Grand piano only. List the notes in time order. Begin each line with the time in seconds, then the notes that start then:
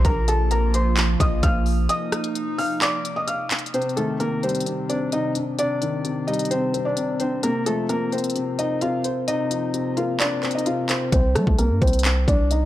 3.74 C3
3.97 D#3
4.20 C3
4.43 G3
4.66 C3
4.89 C4
5.12 C3
5.35 D4
5.59 C3
5.82 D#3
6.05 C3
6.28 G3
6.51 C3
6.74 C4
6.97 C3
7.20 D4
7.43 C3
7.66 F3
7.89 C3
8.12 A#3
8.35 C3
8.58 C4
8.82 C3
9.05 C5
9.28 C3
9.51 F3
9.74 C3
9.97 A#3
10.20 C3
10.43 C4
10.66 C3
10.89 C5